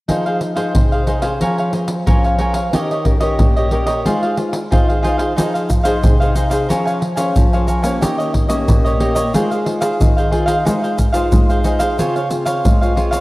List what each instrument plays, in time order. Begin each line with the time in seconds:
0.08 nylon-string guitar F3 D#4 G#4 C5, cavaquinho D#4 G#4 C5 F5, pandeiro, surdo
0.26 cavaquinho G#4 C5 F5, pandeiro
0.41 muted cavaquinho stroke, pandeiro
0.56 nylon-string guitar D#4 G#4 C5, cavaquinho G#4 C5 F5, pandeiro
0.75 nylon-string guitar C3, pandeiro, surdo
0.92 cavaquinho G#4 C5 F5, pandeiro
1.07 cavaquinho D#4 G#4 C5 F5, nylon-string guitar D#4 G#4 C5, pandeiro
1.22 nylon-string guitar C#4 G#4 C5, cavaquinho G#4 C5 F5, pandeiro
1.41 nylon-string guitar F3, cavaquinho A#4 C#5 F5 G#5, pandeiro, surdo
1.58 cavaquinho C#5 F5 G#5, pandeiro
1.73 nylon-string guitar C#4 G#4 C5, muted cavaquinho stroke, pandeiro
1.88 pandeiro
2.06 nylon-string guitar F3 C#4 G#4 C5, cavaquinho A#4 C#5 F5 G#5, pandeiro, surdo
2.24 cavaquinho C#5 F5 G#5, pandeiro
2.38 nylon-string guitar C#4 G#4 C5, cavaquinho A#4 C#5 F5 G#5, pandeiro
2.54 cavaquinho C#5 F5 G#5, pandeiro
2.73 nylon-string guitar D#3 C#4 G4 A#4, cavaquinho D#4 G4 C#5 D#5, pandeiro, surdo
2.91 cavaquinho G4 C#5 D#5, pandeiro
3.05 nylon-string guitar C#4 G4 A#4, muted cavaquinho stroke, pandeiro, surdo
3.20 nylon-string guitar C#4 G4 A#4, cavaquinho G4 C#5 D#5, pandeiro
3.39 nylon-string guitar A#2, pandeiro, surdo
3.57 cavaquinho G4 C#5 D#5, pandeiro
3.71 nylon-string guitar C#4 G4 A#4, cavaquinho D#4 G4 C#5 D#5, pandeiro
3.86 cavaquinho G4 C#5 D#5, pandeiro
4.05 nylon-string guitar G#3 D#4 F4 C5, cavaquinho F4 G#4 C5 F5, pandeiro, surdo
4.23 cavaquinho G#4 C5 F5, pandeiro
4.37 nylon-string guitar D#4 F4 C5, muted cavaquinho stroke, pandeiro
4.53 pandeiro
4.71 nylon-string guitar D#3 D#4 F4 C5, cavaquinho F4 G#4 C5 F5, pandeiro, surdo
4.88 cavaquinho G#4 C5 F5, pandeiro
5.03 nylon-string guitar D#4 F4 C5, cavaquinho F4 G#4 C5 F5, pandeiro
5.18 cavaquinho G#4 C5 F5, pandeiro
5.36 nylon-string guitar F3 D#4 G#4 C5, cavaquinho D#4 G#4 C5 F5, pandeiro, shaker, surdo
5.54 cavaquinho G#4 C5 F5, pandeiro, shaker
5.69 muted cavaquinho stroke, pandeiro, shaker, surdo
5.84 nylon-string guitar D#4 G#4 C5, cavaquinho G#4 C5 F5, pandeiro, shaker
6.04 nylon-string guitar C3, pandeiro, shaker, surdo
6.20 nylon-string guitar D#4 G#4 C5, cavaquinho G#4 C5 F5, pandeiro, shaker
6.35 cavaquinho D#4 G#4 C5 F5, pandeiro, shaker
6.50 cavaquinho G#4 C5 F5, pandeiro, shaker
6.69 nylon-string guitar F3 C#4 G#4 C5, cavaquinho A#4 C#5 F5 G#5, pandeiro, shaker, surdo
6.85 cavaquinho C#5 F5 G#5, pandeiro, shaker
7.00 muted cavaquinho stroke, pandeiro
7.16 nylon-string guitar C#4 G#4 C5, cavaquinho C#5 F5 G#5, pandeiro, shaker
7.36 nylon-string guitar F3, pandeiro, shaker, surdo
7.52 nylon-string guitar C#4 G#4 C5, cavaquinho C#5 F5 G#5, pandeiro, shaker
7.67 cavaquinho A#4 C#5 F5 G#5, pandeiro, shaker
7.82 nylon-string guitar A#3 C#4 G4, cavaquinho C#5 F5 G#5, pandeiro, shaker
8.01 nylon-string guitar D#3, cavaquinho D#4 G4 C#5 D#5, pandeiro, shaker, surdo
8.18 cavaquinho G4 C#5 D#5, pandeiro, shaker
8.33 muted cavaquinho stroke, pandeiro, surdo
8.49 nylon-string guitar A#3 C#4 G4, cavaquinho G4 C#5 D#5, pandeiro, shaker
8.68 nylon-string guitar A#2, pandeiro, shaker, surdo
8.84 cavaquinho G4 C#5 D#5, pandeiro, shaker
9.00 nylon-string guitar A#3 C#4 G4, cavaquinho D#4 G4 C#5 D#5, pandeiro
9.15 cavaquinho G4 C#5 D#5, pandeiro, shaker
9.33 nylon-string guitar G#3 D#4 F4 C5, cavaquinho F4 G#4 C5 F5, pandeiro, shaker, surdo
9.51 cavaquinho G#4 C5 F5, pandeiro, shaker
9.65 nylon-string guitar D#4 F4 C5, muted cavaquinho stroke, pandeiro
9.81 cavaquinho G#4 C5 F5, pandeiro, shaker
9.99 nylon-string guitar D#3, pandeiro, shaker, surdo
10.17 cavaquinho G#4 C5 F5, pandeiro, shaker
10.31 nylon-string guitar D#4 F4 C5, cavaquinho F4 G#4 C5 F5, pandeiro
10.46 cavaquinho G#4 C5 F5, pandeiro, shaker
10.65 nylon-string guitar G#3 D#4 F4 C5, cavaquinho D#4 G#4 C5 F5, pandeiro, shaker, surdo
10.83 cavaquinho G#4 C5 F5, pandeiro, shaker
10.97 muted cavaquinho stroke, pandeiro, shaker, surdo
11.13 nylon-string guitar D#4 F4 C5, cavaquinho G#4 C5 F5, pandeiro, shaker
11.32 nylon-string guitar G#3, pandeiro, shaker, surdo
11.49 cavaquinho G#4 C5 F5, pandeiro, shaker
11.64 cavaquinho D#4 G#4 C5 F5, nylon-string guitar D#4 F4 C5, pandeiro, shaker
11.79 cavaquinho G#4 C5 F5, pandeiro, shaker
11.98 nylon-string guitar C#3 C4 F4 G#4, cavaquinho F4 C5 C#5 F5, pandeiro, shaker, surdo
12.16 cavaquinho C5 C#5 F5, pandeiro, shaker
12.30 nylon-string guitar C4 F4 G#4, muted cavaquinho stroke, pandeiro, shaker
12.45 cavaquinho C5 C#5 F5, pandeiro, shaker
12.65 nylon-string guitar G#3, pandeiro, shaker, surdo
12.81 nylon-string guitar C4 F4 G#4, cavaquinho C5 C#5 F5, pandeiro, shaker
12.96 nylon-string guitar C4 F4 G#4, cavaquinho F4 C5 C#5 F5, pandeiro
13.11 cavaquinho C5 C#5 F5, pandeiro, shaker